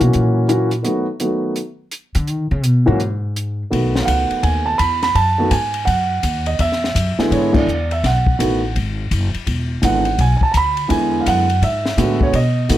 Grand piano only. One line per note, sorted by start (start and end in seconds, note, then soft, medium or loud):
0.00 0.46 E3 medium
0.00 0.46 F#3 medium
0.00 0.46 A#3 medium
0.00 0.46 C#4 medium
0.00 0.47 F#4 medium
0.48 0.70 E3 medium
0.48 0.69 F#3 medium
0.48 0.70 A#3 medium
0.48 0.70 C#4 medium
0.48 0.70 F#4 medium
0.83 1.04 D#3 medium
0.83 1.05 F#3 medium
0.83 1.05 A3 medium
0.83 1.05 B3 medium
0.83 1.05 F#4 medium
1.20 1.56 D#3 medium
1.20 1.56 F#3 soft
1.20 1.56 A3 soft
1.20 1.57 B3 soft
1.20 1.57 F#4 medium
2.86 2.98 E3 medium
2.86 2.99 F#3 medium
2.86 2.99 A#3 medium
2.86 2.99 C#4 medium
2.86 2.99 F#4 medium
3.71 4.71 D#3 soft
3.71 4.71 A3 soft
3.71 4.71 B3 soft
3.71 4.72 F#4 medium
4.02 4.07 F5 medium
4.02 4.44 F#5 medium
4.43 4.67 G#5 medium
4.66 4.80 A5 medium
4.78 5.00 B5 medium
5.03 5.16 B5 medium
5.16 5.53 A5 loud
5.38 5.50 D#3 medium
5.38 5.50 A3 medium
5.38 5.51 B3 medium
5.38 5.51 F#4 medium
5.51 5.85 G#5 medium
5.85 6.47 F#5 medium
6.47 6.59 D#5 medium
6.60 7.28 E5 medium
7.19 7.52 D3 medium
7.19 7.51 G#3 medium
7.19 7.52 B3 medium
7.19 7.52 E4 medium
7.32 7.55 C#5 medium
7.53 7.66 D3 medium
7.53 7.65 G#3 medium
7.53 7.66 B3 medium
7.53 7.66 E4 medium
7.57 7.89 D5 medium
7.92 8.05 E5 medium
8.06 8.73 F#5 medium
8.39 8.60 D#3 medium
8.39 8.60 A3 medium
8.39 8.60 B3 medium
8.39 8.60 F#4 medium
9.82 10.03 D3 medium
9.82 10.03 G#3 soft
9.82 10.04 B3 medium
9.82 10.04 E4 medium
9.82 10.21 F#5 medium
10.21 10.35 G#5 medium
10.37 10.42 G#5 medium
10.43 10.50 A5 medium
10.52 10.56 A#5 medium
10.57 10.93 B5 medium
10.88 11.44 D3 soft
10.88 11.44 G#3 medium
10.88 11.44 B3 soft
10.88 11.44 E4 medium
10.88 11.20 G#5 medium
11.21 11.26 F5 medium
11.28 11.61 F#5 medium
11.63 12.24 E5 medium
11.97 12.34 D3 medium
11.97 12.34 G#3 medium
11.97 12.34 B3 medium
11.97 12.34 F#4 medium
12.23 12.36 C#5 medium
12.35 12.78 D#5 medium
12.69 12.78 D#3 medium
12.69 12.78 A3 medium
12.69 12.78 B3 medium
12.69 12.78 F#4 medium